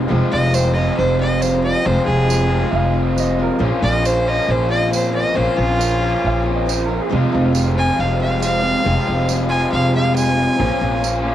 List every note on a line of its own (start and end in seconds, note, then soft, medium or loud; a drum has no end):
0.08 0.20 F1 loud
0.08 0.31 F2 medium
0.08 0.78 F2 medium
0.08 0.31 C3 medium
0.08 0.74 C3 medium
0.08 0.31 F3 medium
0.08 0.77 F3 medium
0.08 0.31 G#3 medium
0.08 0.76 G#3 medium
0.08 0.30 C4 medium
0.08 3.57 C4 medium
0.08 0.76 C4 medium
0.08 3.57 F4 medium
0.08 0.29 F4 loud
0.08 0.75 F4 medium
0.08 3.58 G#4 medium
0.08 3.58 C5 medium
0.31 0.88 F1 loud
0.31 0.52 F3 soft
0.31 0.53 G#3 soft
0.31 0.53 C4 soft
0.31 0.53 F4 medium
0.31 0.56 D#5 loud
0.53 1.22 F3 medium
0.53 1.20 G#3 medium
0.53 1.20 C4 medium
0.53 1.21 F4 medium
0.53 0.76 C5 medium
0.53 tambourine loud
0.74 1.84 C3 medium
0.74 1.85 F3 medium
0.74 1.85 G#3 medium
0.74 1.87 C4 medium
0.74 1.88 F4 medium
0.74 0.96 D#5 medium
0.79 1.83 F2 medium
0.97 1.72 F1 loud
0.97 1.19 C5 medium
1.20 1.41 F3 soft
1.20 1.41 G#3 soft
1.20 1.42 C4 medium
1.20 1.42 F4 medium
1.20 1.43 D#5 medium
1.41 1.64 F3 medium
1.41 1.63 G#3 medium
1.41 1.62 C4 medium
1.41 1.62 F4 medium
1.41 1.63 C5 medium
1.41 tambourine loud
1.63 1.85 F3 soft
1.63 1.85 G#3 medium
1.63 1.86 C4 soft
1.63 1.85 F4 soft
1.63 1.87 D#5 loud
1.85 1.95 F1 loud
1.85 2.50 F2 medium
1.85 2.08 F2 medium
1.85 2.50 C3 medium
1.85 2.08 C3 medium
1.85 2.51 F3 medium
1.85 2.07 F3 medium
1.85 2.06 G#3 medium
1.85 2.49 G#3 loud
1.85 2.06 C4 medium
1.85 2.49 C4 loud
1.85 2.05 F4 medium
1.85 2.48 F4 medium
1.85 2.05 C5 loud
2.06 2.63 F1 medium
2.06 2.27 F3 soft
2.06 2.28 G#3 soft
2.06 2.29 C4 soft
2.06 2.29 F4 medium
2.06 2.92 G#4 loud
2.28 2.95 F3 medium
2.28 2.94 G#3 medium
2.28 2.94 C4 medium
2.28 2.93 F4 medium
2.28 tambourine loud
2.48 3.60 C3 medium
2.48 3.61 F3 medium
2.48 3.59 G#3 medium
2.48 3.62 C4 medium
2.48 3.63 F4 medium
2.53 3.61 F2 medium
2.71 3.47 F1 medium
2.71 2.74 E5 medium
2.75 3.17 F5 loud
2.94 3.15 F3 medium
2.94 3.16 G#3 medium
2.94 3.17 C4 medium
2.94 3.16 F4 medium
3.16 3.39 F3 medium
3.16 3.38 G#3 medium
3.16 3.38 C4 medium
3.16 3.38 F4 medium
3.16 3.40 D#5 medium
3.16 tambourine medium
3.39 3.58 F3 soft
3.39 3.59 G#3 medium
3.39 3.58 C4 medium
3.39 3.59 F4 medium
3.39 3.61 F4 medium
3.39 3.62 A#4 medium
3.59 3.70 A#1 loud
3.59 3.82 A#2 medium
3.59 4.29 A#2 medium
3.59 3.82 F3 medium
3.59 4.28 F3 loud
3.59 4.27 A#3 loud
3.59 3.82 C4 medium
3.59 7.06 C#4 medium
3.59 3.81 C#4 medium
3.59 3.81 F4 medium
3.59 7.07 F4 medium
3.59 7.08 A#4 medium
3.59 7.08 C5 medium
3.63 4.26 C#4 medium
3.63 4.25 F4 medium
3.82 4.38 A#1 loud
3.82 4.05 C4 soft
3.82 4.05 C#4 soft
3.82 4.04 F4 medium
3.82 4.08 D#5 loud
4.04 4.90 F3 medium
4.04 4.69 C#4 medium
4.04 4.69 F4 medium
4.04 4.30 C5 medium
4.04 tambourine loud
4.26 5.34 A#2 medium
4.26 5.36 F3 medium
4.26 5.36 A#3 medium
4.26 5.35 C#4 medium
4.26 5.38 F4 loud
4.26 4.52 D#5 medium
4.49 5.22 A#1 loud
4.49 4.69 C5 medium
4.69 4.90 C4 soft
4.69 4.91 C#4 soft
4.69 4.91 F4 medium
4.69 4.92 D#5 medium
4.90 5.13 F3 medium
4.90 5.13 C4 medium
4.90 5.11 C#4 medium
4.90 5.11 F4 medium
4.90 5.13 C5 medium
4.90 tambourine loud
5.12 5.33 C4 soft
5.12 5.33 C#4 medium
5.12 5.34 F4 soft
5.12 5.37 D#5 medium
5.34 5.46 A#1 loud
5.34 5.57 A#2 medium
5.34 6.00 A#2 medium
5.34 5.57 F3 medium
5.34 6.04 F3 medium
5.34 6.01 A#3 medium
5.34 5.56 C4 medium
5.34 5.56 C#4 medium
5.34 6.01 C#4 medium
5.34 5.54 F4 medium
5.34 5.59 C5 medium
5.39 6.01 F4 loud
5.56 6.14 A#1 loud
5.56 5.80 C4 soft
5.56 5.78 C#4 soft
5.56 5.79 F4 medium
5.56 6.43 F4 loud
5.78 6.65 F3 medium
5.78 6.44 C#4 medium
5.78 6.43 F4 medium
5.78 tambourine loud
6.01 7.11 A#2 medium
6.01 7.13 F3 medium
6.01 7.11 A#3 medium
6.01 7.10 C#4 medium
6.01 7.14 F4 medium
6.25 6.98 A#1 medium
6.25 6.54 F5 medium
6.43 6.65 C4 medium
6.43 6.66 C#4 medium
6.43 6.66 F4 medium
6.56 6.69 D#5 medium
6.66 6.89 F3 medium
6.66 6.89 C4 medium
6.66 6.88 C#4 medium
6.66 6.87 F4 medium
6.66 tambourine medium
6.70 6.83 C5 medium
6.85 7.10 C#4 medium
6.85 7.09 F4 medium
6.85 6.98 A#4 medium
6.91 7.09 C4 soft
7.01 7.13 G#4 medium
7.09 7.21 F1 loud
7.09 7.32 F2 medium
7.09 7.79 F2 medium
7.09 7.32 C3 medium
7.09 7.76 C3 medium
7.09 7.32 F3 medium
7.09 7.31 G#3 medium
7.09 10.56 G#3 medium
7.09 7.31 C4 medium
7.09 9.90 C4 medium
7.09 7.30 F4 loud
7.09 9.90 F4 medium
7.09 10.56 F4 medium
7.09 9.91 G#4 medium
7.09 10.57 F5 medium
7.13 7.78 F3 medium
7.13 7.77 G#3 medium
7.13 7.76 C4 loud
7.13 7.75 F4 loud
7.13 7.28 F4 medium
7.13 11.35 C5 medium
7.13 9.91 C5 medium
7.31 7.89 F1 loud
7.31 7.51 F3 medium
7.31 7.52 G#3 medium
7.31 7.53 C4 medium
7.31 7.43 D#4 medium
7.31 7.54 F4 medium
7.45 7.67 F4 medium
7.52 8.22 F3 medium
7.52 8.20 G#3 medium
7.52 8.20 C4 medium
7.52 8.20 F4 medium
7.52 tambourine loud
7.76 8.82 F2 medium
7.76 8.83 C3 medium
7.76 8.85 F3 medium
7.76 8.84 G#3 medium
7.76 8.86 C4 medium
7.76 8.86 F4 medium
7.76 8.01 G#5 loud
7.99 8.72 F1 medium
7.99 8.20 F5 medium
8.20 8.39 F3 medium
8.20 8.40 G#3 soft
8.20 8.40 C4 soft
8.20 8.41 F4 soft
8.20 8.41 F5 medium
8.40 8.62 F3 medium
8.40 8.63 G#3 medium
8.40 8.62 C4 medium
8.40 8.61 F4 medium
8.40 9.26 F5 loud
8.40 tambourine loud
8.62 8.83 F3 soft
8.62 8.83 G#3 soft
8.62 8.84 C4 medium
8.62 8.84 F4 medium
8.83 8.95 F1 loud
8.83 9.48 F2 medium
8.83 9.06 F2 medium
8.83 9.07 C3 medium
8.83 9.49 C3 loud
8.83 9.06 F3 medium
8.83 9.51 F3 medium
8.83 9.05 G#3 medium
8.83 9.49 G#3 medium
8.83 9.04 C4 medium
8.83 9.51 C4 loud
8.83 9.04 F4 medium
8.83 9.49 F4 medium
9.05 9.63 F1 loud
9.05 9.26 F3 medium
9.05 9.28 G#3 medium
9.05 9.28 C4 medium
9.05 9.28 F4 medium
9.27 9.94 F3 medium
9.27 9.93 G#3 medium
9.27 9.93 C4 medium
9.27 9.92 F4 medium
9.27 tambourine loud
9.49 10.58 C3 medium
9.49 10.58 F3 medium
9.49 10.58 G#3 medium
9.49 10.60 C4 medium
9.49 10.61 F4 medium
9.49 9.71 G#5 loud
9.53 10.59 F2 medium
9.72 10.46 F1 medium
9.72 9.93 F5 medium
9.93 10.14 F3 soft
9.93 10.15 G#3 soft
9.93 10.15 C4 medium
9.93 10.59 C4 soft
9.93 10.15 F4 medium
9.93 10.58 F4 soft
9.93 10.60 G#4 soft
9.93 10.59 C5 medium
9.93 10.15 F5 medium
10.15 10.35 F3 medium
10.15 10.35 G#3 medium
10.15 10.34 C4 medium
10.15 10.34 F4 medium
10.15 11.00 G#5 loud
10.15 tambourine medium
10.35 10.57 F3 soft
10.35 10.58 G#3 medium
10.35 10.58 C4 medium
10.35 10.58 F4 medium
10.58 10.69 A#1 loud
10.58 10.80 A#2 medium
10.58 11.22 A#2 medium
10.58 10.80 F3 medium
10.58 11.25 F3 medium
10.58 11.35 A#3 medium
10.58 11.23 A#3 medium
10.58 10.80 C4 medium
10.58 10.80 C#4 medium
10.58 11.35 C#4 medium
10.58 11.22 C#4 loud
10.58 11.35 F4 medium
10.58 10.79 F4 medium
10.58 11.22 F4 loud
10.58 11.35 A#4 medium
10.58 11.35 C5 medium
10.58 11.35 F5 medium
10.80 11.35 A#1 medium
10.80 11.03 C4 medium
10.80 11.02 C#4 medium
10.80 11.02 F4 medium
11.02 11.35 F3 medium
11.02 11.35 C#4 medium
11.02 11.35 F4 medium
11.02 tambourine loud
11.22 11.35 F3 medium
11.22 11.35 A#3 medium
11.22 11.35 C#4 medium
11.22 11.35 F4 medium
11.26 11.35 A#2 medium